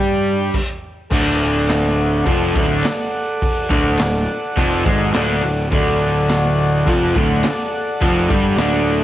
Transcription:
0.00 0.50 G2 medium
0.00 0.53 G3 medium
0.00 0.48 G4 medium
0.00 0.54 G4 medium
0.00 0.49 D5 medium
0.00 0.50 G5 medium
0.54 kick loud
0.54 crash loud
1.10 2.23 D1 medium
1.10 2.25 D2 medium
1.10 2.26 D3 loud
1.10 5.67 A4 medium
1.10 5.68 D5 medium
1.10 5.69 F#5 medium
1.10 kick loud
1.10 crash loud
1.10 crash medium
1.69 snare loud
1.69 clap loud
1.69 crash medium
2.25 2.53 F1 medium
2.25 2.54 F2 loud
2.25 2.54 F3 loud
2.25 kick loud
2.25 crash medium
2.55 2.82 D1 loud
2.55 2.83 D2 medium
2.55 2.84 D3 loud
2.55 kick loud
2.82 snare loud
2.82 clap loud
2.82 crash medium
3.42 kick loud
3.42 crash medium
3.70 3.97 D1 medium
3.70 3.98 D2 medium
3.70 3.98 D3 loud
3.70 kick loud
3.99 4.26 D1 medium
3.99 4.22 D2 medium
3.99 snare loud
3.99 clap loud
3.99 crash medium
4.57 4.84 F1 medium
4.57 4.84 F2 loud
4.57 4.85 F3 loud
4.57 kick loud
4.57 crash medium
4.85 5.12 G#1 medium
4.85 5.13 G#2 medium
4.85 5.14 G#3 loud
4.85 kick loud
5.13 5.41 D1 medium
5.13 5.41 D2 medium
5.13 5.42 D3 loud
5.13 snare loud
5.13 clap medium
5.13 crash medium
5.43 5.70 D1 medium
5.43 5.66 D2 medium
5.72 6.83 D1 loud
5.72 6.86 D2 medium
5.72 6.86 D3 loud
5.72 9.04 A4 medium
5.72 9.04 D5 medium
5.72 9.04 F#5 medium
5.72 kick loud
5.72 crash medium
6.30 snare loud
6.30 clap medium
6.30 crash medium
6.86 7.13 F1 medium
6.86 7.14 F2 medium
6.86 7.15 F3 loud
6.86 kick loud
6.86 crash medium
7.15 7.42 D1 loud
7.15 7.43 D2 medium
7.15 7.44 D3 medium
7.15 kick loud
7.44 snare loud
7.44 clap loud
7.44 crash medium
8.01 8.28 F1 loud
8.01 8.29 F2 medium
8.01 8.30 F3 loud
8.01 kick loud
8.01 crash medium
8.29 8.57 G1 medium
8.29 8.57 G2 medium
8.29 8.58 G3 medium
8.29 kick loud
8.57 9.04 D1 medium
8.57 9.04 D2 medium
8.57 9.04 D3 loud
8.57 snare loud
8.57 clap medium
8.57 crash medium

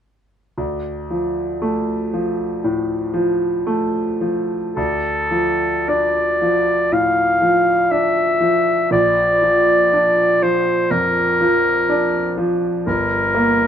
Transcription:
0.58 2.59 D2 soft
1.10 1.93 F3 soft
1.62 2.43 A3 soft
2.13 2.94 F3 soft
2.64 3.45 A2 soft
3.14 3.99 F3 soft
3.67 4.55 A3 soft
4.21 4.77 F3 soft
4.76 6.89 D2 soft
4.76 5.90 A4 soft
5.31 6.21 F3 soft
5.88 6.72 D4 soft
5.88 6.95 D5 soft
6.42 7.22 F3 soft
6.92 7.72 A2 soft
6.92 7.93 F5 medium
7.42 8.21 F3 soft
7.91 8.71 D4 soft
7.91 8.91 E5 medium
8.40 8.91 F3 soft
8.91 10.87 A#1 soft
8.91 10.44 D5 medium
9.42 10.23 F3 soft
9.93 10.72 D4 soft
10.42 11.20 F3 soft
10.42 10.93 C5 medium
10.91 11.69 F2 soft
10.91 12.38 A#4 medium
11.41 12.19 F3 soft
11.89 12.67 D4 soft
12.37 12.86 F3 soft
12.87 13.67 G1 soft
12.87 13.67 A#4 medium
13.35 13.67 A#3 soft

